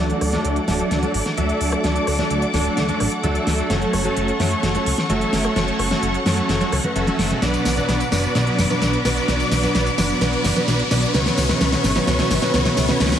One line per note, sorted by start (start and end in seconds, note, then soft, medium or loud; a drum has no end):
0.00 0.13 D2 loud
0.00 0.30 F#3 medium
0.00 0.30 A3 medium
0.00 0.30 D4 medium
0.00 0.30 A4 medium
0.00 7.38 A4 medium
0.00 0.30 D5 loud
0.00 3.66 D5 medium
0.00 11.10 F#5 medium
0.00 3.66 D6 medium
0.00 riser medium
0.10 closed hi-hat soft
0.21 0.36 D2 loud
0.21 cross-stick medium
0.21 open hi-hat loud
0.32 0.65 F#3 medium
0.32 0.59 F#3 loud
0.32 0.59 A3 medium
0.32 0.65 A3 medium
0.32 0.59 D4 medium
0.32 0.65 D4 medium
0.32 0.59 A4 medium
0.32 0.65 A4 medium
0.32 0.59 D5 loud
0.32 snare soft
0.32 closed hi-hat soft
0.45 0.59 D2 medium
0.45 closed hi-hat medium
0.56 closed hi-hat soft
0.67 0.83 D1 loud
0.67 1.00 F#3 medium
0.67 1.00 A3 medium
0.67 1.00 D4 medium
0.67 1.00 A4 medium
0.67 1.00 D5 medium
0.67 snare soft
0.67 open hi-hat medium
0.80 closed hi-hat soft
0.91 1.06 D2 medium
0.91 snare medium
0.91 closed hi-hat medium
1.02 1.34 F#3 medium
1.02 1.19 F#3 medium
1.02 1.19 A3 medium
1.02 1.35 A3 medium
1.02 1.19 D4 medium
1.02 1.35 D4 medium
1.02 1.19 A4 medium
1.02 1.35 A4 medium
1.02 1.19 D5 medium
1.02 closed hi-hat soft
1.14 1.22 A1 medium
1.14 open hi-hat loud
1.26 snare soft
1.26 closed hi-hat soft
1.37 1.52 D2 loud
1.37 1.81 F#3 medium
1.37 1.81 A3 medium
1.37 1.81 D4 medium
1.37 1.81 A4 medium
1.37 1.82 A4 medium
1.37 1.81 E5 medium
1.37 closed hi-hat medium
1.49 closed hi-hat soft
1.61 1.76 D2 medium
1.61 open hi-hat medium
1.72 cross-stick medium
1.72 closed hi-hat soft
1.83 1.99 D2 loud
1.83 2.16 F#3 medium
1.83 2.16 A3 medium
1.83 2.16 D4 medium
1.83 2.16 A4 medium
1.83 2.16 D5 loud
1.83 snare medium
1.83 closed hi-hat medium
1.96 closed hi-hat soft
2.07 2.22 D2 loud
2.07 cross-stick medium
2.07 open hi-hat loud
2.18 2.51 F#3 medium
2.18 2.45 F#3 medium
2.18 2.51 A3 medium
2.18 2.45 A3 medium
2.18 2.45 D4 medium
2.18 2.51 D4 medium
2.18 2.45 A4 medium
2.18 2.51 A4 medium
2.18 2.45 D5 loud
2.18 snare soft
2.30 2.45 D2 medium
2.30 closed hi-hat medium
2.42 closed hi-hat soft
2.53 2.69 D1 loud
2.53 2.86 F#3 medium
2.53 2.86 A3 medium
2.53 2.86 D4 medium
2.53 2.86 A4 medium
2.53 2.86 D5 medium
2.53 snare medium
2.53 open hi-hat medium
2.65 closed hi-hat soft
2.77 2.92 D2 medium
2.77 snare medium
2.77 closed hi-hat medium
2.88 3.21 F#3 medium
2.88 3.05 F#3 medium
2.88 3.05 A3 medium
2.88 3.21 A3 medium
2.88 3.05 D4 medium
2.88 3.21 D4 medium
2.88 3.05 A4 medium
2.88 3.21 A4 medium
2.88 3.05 D5 medium
2.88 closed hi-hat soft
3.00 3.08 A1 medium
3.00 cross-stick medium
3.00 open hi-hat loud
3.12 closed hi-hat soft
3.23 3.38 D2 loud
3.23 3.67 F#3 medium
3.23 3.67 A3 medium
3.23 3.67 D4 medium
3.23 3.67 A4 medium
3.23 3.68 A4 loud
3.23 3.67 E5 medium
3.23 closed hi-hat medium
3.35 closed hi-hat soft
3.47 3.62 D2 medium
3.47 snare medium
3.47 open hi-hat medium
3.58 closed hi-hat soft
3.70 3.85 F#1 loud
3.70 4.02 F#3 medium
3.70 4.02 A3 medium
3.70 4.02 C#4 medium
3.70 4.02 A4 medium
3.70 4.03 A4 medium
3.70 4.02 C#5 loud
3.70 7.39 C#5 medium
3.70 7.39 C#6 medium
3.70 snare medium
3.70 closed hi-hat medium
3.82 closed hi-hat soft
3.93 4.08 F#1 loud
3.93 cross-stick medium
3.93 open hi-hat loud
4.04 4.37 F#3 medium
4.04 4.31 F#3 loud
4.04 4.37 A3 medium
4.04 4.31 A3 medium
4.04 4.31 C#4 medium
4.04 4.37 C#4 medium
4.04 4.31 A4 medium
4.04 4.37 A4 medium
4.04 4.31 C#5 loud
4.04 closed hi-hat soft
4.17 4.31 F#1 medium
4.17 closed hi-hat medium
4.28 closed hi-hat soft
4.39 4.55 F#2 loud
4.39 4.72 F#3 medium
4.39 4.72 A3 medium
4.39 4.72 C#4 medium
4.39 4.72 A4 medium
4.39 4.72 C#5 medium
4.39 snare medium
4.39 open hi-hat medium
4.51 closed hi-hat soft
4.63 4.78 F#1 medium
4.63 snare medium
4.63 closed hi-hat medium
4.74 5.07 F#3 medium
4.74 4.91 F#3 medium
4.74 4.91 A3 medium
4.74 5.07 A3 medium
4.74 4.91 C#4 medium
4.74 5.07 C#4 medium
4.74 4.91 A4 medium
4.74 5.07 A4 medium
4.74 4.91 C#5 medium
4.74 closed hi-hat soft
4.86 4.94 C#2 medium
4.86 open hi-hat loud
4.98 snare medium
5.09 5.24 F#1 loud
5.09 5.53 F#3 medium
5.09 5.53 A3 medium
5.09 5.53 C#4 medium
5.09 5.53 A4 medium
5.09 5.54 A4 medium
5.09 5.53 E5 medium
5.09 closed hi-hat medium
5.21 closed hi-hat soft
5.33 5.48 F#1 medium
5.33 snare medium
5.33 open hi-hat medium
5.45 cross-stick medium
5.45 closed hi-hat soft
5.56 5.71 F#1 loud
5.56 5.88 F#3 medium
5.56 5.88 A3 medium
5.56 5.88 C#4 medium
5.56 5.88 A4 medium
5.56 5.89 A4 medium
5.56 5.88 C#5 loud
5.56 snare medium
5.56 closed hi-hat medium
5.68 closed hi-hat soft
5.79 5.94 F#1 loud
5.79 cross-stick medium
5.79 open hi-hat loud
5.90 6.23 F#3 medium
5.90 6.17 F#3 medium
5.90 6.17 A3 medium
5.90 6.23 A3 medium
5.90 6.17 C#4 medium
5.90 6.23 C#4 medium
5.90 6.17 A4 medium
5.90 6.23 A4 medium
5.90 6.17 C#5 loud
5.90 snare medium
5.90 closed hi-hat soft
6.03 6.17 F#1 medium
6.03 closed hi-hat medium
6.14 closed hi-hat soft
6.25 6.41 F#2 loud
6.25 6.58 F#3 medium
6.25 6.58 A3 medium
6.25 6.58 C#4 medium
6.25 6.58 A4 medium
6.25 6.58 C#5 medium
6.25 snare medium
6.25 open hi-hat loud
6.38 closed hi-hat soft
6.49 6.64 F#1 medium
6.49 snare medium
6.49 closed hi-hat medium
6.60 6.81 F#3 medium
6.60 6.77 F#3 medium
6.60 6.77 A3 medium
6.60 6.82 A3 medium
6.60 6.77 C#4 medium
6.60 6.82 C#4 medium
6.60 6.77 A4 medium
6.60 6.82 A4 medium
6.60 6.77 C#5 medium
6.60 closed hi-hat soft
6.72 6.80 C#2 loud
6.72 cross-stick medium
6.72 open hi-hat loud
6.83 7.04 F#3 medium
6.83 7.04 A3 medium
6.83 7.05 C#4 medium
6.83 7.05 B4 medium
6.83 closed hi-hat soft
6.96 7.10 F#1 loud
6.96 7.39 F#3 medium
6.96 7.39 A3 medium
6.96 7.39 C#4 medium
6.96 7.39 A4 medium
6.96 7.39 E5 medium
6.96 closed hi-hat medium
7.07 7.16 F#3 medium
7.07 7.16 A3 medium
7.07 7.16 C#4 medium
7.07 7.16 A4 loud
7.07 closed hi-hat soft
7.19 7.34 F#1 medium
7.19 snare medium
7.19 open hi-hat medium
7.30 7.40 B2 medium
7.30 7.40 F#3 medium
7.30 7.40 A3 medium
7.30 7.41 C#4 medium
7.30 7.41 G#4 medium
7.30 closed hi-hat soft
7.41 7.57 B1 loud
7.41 7.74 B2 medium
7.41 7.74 F#3 medium
7.41 7.74 B3 medium
7.41 7.74 D4 medium
7.41 11.11 B4 medium
7.41 7.74 B4 medium
7.41 7.75 B4 medium
7.41 11.11 D5 medium
7.41 7.74 D5 medium
7.41 11.11 D6 medium
7.41 snare medium
7.41 closed hi-hat medium
7.41 tambourine soft
7.54 closed hi-hat soft
7.54 tambourine soft
7.65 7.80 B1 loud
7.65 snare medium
7.65 open hi-hat loud
7.65 tambourine medium
7.76 8.09 B2 medium
7.76 8.03 F#3 medium
7.76 8.09 F#3 medium
7.76 8.03 B3 medium
7.76 8.09 B3 medium
7.76 8.03 D4 medium
7.76 8.09 D4 medium
7.76 8.03 B4 medium
7.76 8.09 B4 medium
7.76 8.03 D5 loud
7.76 closed hi-hat soft
7.76 tambourine soft
7.89 8.04 B1 medium
7.89 snare medium
7.89 closed hi-hat medium
7.89 tambourine soft
8.00 closed hi-hat soft
8.00 tambourine soft
8.11 8.27 F#1 loud
8.11 8.33 B2 medium
8.11 8.33 F#3 medium
8.11 8.33 B3 medium
8.11 8.33 D4 medium
8.11 8.34 D4 medium
8.11 8.33 B4 medium
8.11 8.34 B4 medium
8.11 8.33 D5 medium
8.11 snare medium
8.11 open hi-hat medium
8.11 tambourine medium
8.24 closed hi-hat soft
8.24 tambourine soft
8.35 8.50 B1 medium
8.35 8.67 B2 medium
8.35 8.67 F#3 medium
8.35 8.67 B3 medium
8.35 8.67 D4 medium
8.35 8.67 B4 medium
8.35 8.68 B4 medium
8.35 8.67 D5 medium
8.35 snare medium
8.35 closed hi-hat medium
8.35 tambourine soft
8.47 closed hi-hat soft
8.59 8.66 F#1 medium
8.59 snare medium
8.59 open hi-hat loud
8.59 tambourine medium
8.69 9.02 B2 medium
8.69 9.02 F#3 medium
8.69 8.96 F#3 medium
8.69 8.96 B3 medium
8.69 9.02 B3 medium
8.69 8.96 D4 medium
8.69 9.02 D4 medium
8.69 8.96 B4 medium
8.69 9.03 B4 medium
8.69 8.96 D5 loud
8.69 closed hi-hat soft
8.69 tambourine soft
8.82 8.97 B1 loud
8.82 snare medium
8.82 closed hi-hat medium
8.82 tambourine soft
8.93 closed hi-hat soft
9.04 9.20 B1 medium
9.04 9.26 B2 medium
9.04 9.27 F#3 medium
9.04 9.26 F#3 medium
9.04 9.26 B3 medium
9.04 9.26 D4 medium
9.04 9.27 D4 medium
9.04 9.26 B4 medium
9.04 9.27 B4 medium
9.04 9.26 D5 medium
9.04 snare medium
9.04 open hi-hat medium
9.04 tambourine medium
9.17 closed hi-hat soft
9.17 tambourine soft
9.28 9.43 B1 loud
9.28 9.60 B2 medium
9.28 9.60 F#3 medium
9.28 9.60 B3 medium
9.28 9.60 D4 medium
9.28 9.61 D4 medium
9.28 9.60 B4 medium
9.28 9.61 B4 medium
9.28 9.60 D5 loud
9.28 snare medium
9.28 closed hi-hat medium
9.28 tambourine soft
9.40 closed hi-hat soft
9.40 tambourine soft
9.52 9.66 B1 loud
9.52 snare medium
9.52 open hi-hat loud
9.52 tambourine medium
9.62 9.95 B2 medium
9.62 9.89 F#3 medium
9.62 9.95 F#3 medium
9.62 9.89 B3 medium
9.62 9.95 B3 medium
9.62 9.89 D4 medium
9.62 9.95 D4 medium
9.62 9.89 B4 medium
9.62 9.96 B4 medium
9.62 9.89 D5 loud
9.62 closed hi-hat soft
9.62 tambourine soft
9.75 9.90 B1 medium
9.75 snare medium
9.75 closed hi-hat medium
9.75 tambourine soft
9.86 closed hi-hat soft
9.86 tambourine soft
9.97 10.13 F#1 medium
9.97 10.19 B2 medium
9.97 10.19 F#3 medium
9.97 10.19 B3 medium
9.97 10.19 D4 medium
9.97 10.20 D4 medium
9.97 10.19 B4 medium
9.97 10.20 B4 medium
9.97 10.19 D5 medium
9.97 snare medium
9.97 open hi-hat medium
9.97 tambourine medium
10.10 closed hi-hat soft
10.10 tambourine soft
10.21 10.36 B1 medium
10.21 10.53 B2 medium
10.21 10.53 F#3 medium
10.21 10.53 B3 medium
10.21 10.53 D4 medium
10.21 10.54 D4 medium
10.21 10.53 B4 medium
10.21 10.54 B4 medium
10.21 10.53 D5 medium
10.21 snare medium
10.21 closed hi-hat medium
10.21 tambourine soft
10.33 closed hi-hat soft
10.44 10.52 F#1 medium
10.44 snare medium
10.44 open hi-hat loud
10.44 tambourine medium
10.55 10.88 B2 medium
10.55 10.82 F#3 medium
10.55 10.88 F#3 medium
10.55 10.82 B3 medium
10.55 10.88 B3 medium
10.55 10.82 D4 medium
10.55 10.88 D4 medium
10.55 10.82 B4 medium
10.55 10.89 B4 medium
10.55 10.82 D5 loud
10.55 closed hi-hat soft
10.55 tambourine soft
10.68 10.83 B1 loud
10.68 snare medium
10.68 closed hi-hat medium
10.68 tambourine soft
10.79 closed hi-hat soft
10.90 11.06 B1 medium
10.90 11.12 B2 medium
10.90 11.12 F#3 medium
10.90 11.12 B3 medium
10.90 11.12 D4 medium
10.90 11.13 D4 medium
10.90 11.12 B4 medium
10.90 11.13 B4 medium
10.90 11.12 D5 medium
10.90 snare medium
10.90 open hi-hat medium
10.90 tambourine medium
11.03 closed hi-hat soft
11.03 tambourine soft
11.14 11.29 C#2 loud
11.14 11.46 B2 medium
11.14 11.46 F#3 medium
11.14 11.46 B3 medium
11.14 11.46 C#4 medium
11.14 11.47 C#4 medium
11.14 13.19 A4 medium
11.14 11.46 B4 medium
11.14 11.47 B4 medium
11.14 11.46 C#5 loud
11.14 13.19 C#5 medium
11.14 13.19 E5 medium
11.14 13.19 C#6 medium
11.14 snare medium
11.14 closed hi-hat medium
11.14 tambourine soft
11.26 snare medium
11.26 closed hi-hat soft
11.26 tambourine soft
11.38 11.52 C#2 loud
11.38 snare medium
11.38 open hi-hat loud
11.38 tambourine medium
11.48 11.59 B2 medium
11.48 11.59 F#3 medium
11.48 11.59 B3 medium
11.48 11.59 C#4 medium
11.48 11.59 B4 medium
11.48 11.59 C#5 loud
11.48 snare medium
11.48 closed hi-hat soft
11.48 tambourine soft
11.60 11.76 C#2 medium
11.60 11.93 B2 medium
11.60 11.93 F#3 medium
11.60 11.93 B3 medium
11.60 11.93 C#4 medium
11.60 11.93 B4 medium
11.60 11.93 C#5 loud
11.60 snare medium
11.60 closed hi-hat medium
11.60 tambourine soft
11.73 snare medium
11.73 closed hi-hat soft
11.73 tambourine soft
11.84 11.99 G#1 loud
11.84 snare medium
11.84 open hi-hat medium
11.84 tambourine medium
11.95 12.05 B2 medium
11.95 12.05 F#3 loud
11.95 12.05 F#3 medium
11.95 12.05 B3 medium
11.95 12.05 C#4 medium
11.95 12.06 C#4 medium
11.95 12.05 B4 medium
11.95 12.06 B4 medium
11.95 12.05 C#5 loud
11.95 snare medium
11.95 closed hi-hat soft
11.95 tambourine soft
12.07 12.22 C#2 medium
12.07 12.39 B2 medium
12.07 12.39 F#3 medium
12.07 12.39 B3 medium
12.07 12.39 C#4 medium
12.07 12.40 C#4 medium
12.07 12.39 B4 medium
12.07 12.40 B4 medium
12.07 12.39 C#5 loud
12.07 snare medium
12.07 closed hi-hat medium
12.07 tambourine soft
12.19 snare medium
12.19 closed hi-hat soft
12.31 12.38 G#1 medium
12.31 snare loud
12.31 open hi-hat loud
12.31 tambourine medium
12.42 12.52 B2 medium
12.42 12.52 F#3 medium
12.42 12.52 B3 medium
12.42 12.52 C#4 medium
12.42 12.52 B4 medium
12.42 12.52 C#5 loud
12.42 snare medium
12.42 closed hi-hat soft
12.42 tambourine soft
12.53 12.69 C#2 loud
12.53 12.86 B2 medium
12.53 12.86 F#3 medium
12.53 12.86 B3 medium
12.53 12.86 C#4 medium
12.53 12.86 B4 medium
12.53 12.86 C#5 medium
12.53 snare loud
12.53 closed hi-hat medium
12.53 tambourine soft
12.65 snare medium
12.65 closed hi-hat soft
12.77 12.92 C#2 medium
12.77 snare loud
12.77 open hi-hat medium
12.77 tambourine medium
12.88 12.98 B2 medium
12.88 12.98 F#3 loud
12.88 12.98 F#3 medium
12.88 12.98 B3 medium
12.88 12.98 C#4 medium
12.88 12.99 C#4 medium
12.88 12.98 B4 medium
12.88 12.99 B4 medium
12.88 12.98 C#5 loud
12.88 snare medium
12.88 closed hi-hat soft
12.88 tambourine soft
13.00 13.15 C#2 loud
13.00 13.19 B2 medium
13.00 13.19 F#3 medium
13.00 13.19 B3 medium
13.00 13.19 C#4 medium
13.00 13.19 B4 medium
13.00 13.19 C#5 loud
13.00 snare loud
13.00 closed hi-hat medium
13.00 tambourine soft
13.06 snare medium
13.12 snare medium
13.12 closed hi-hat soft
13.12 tambourine soft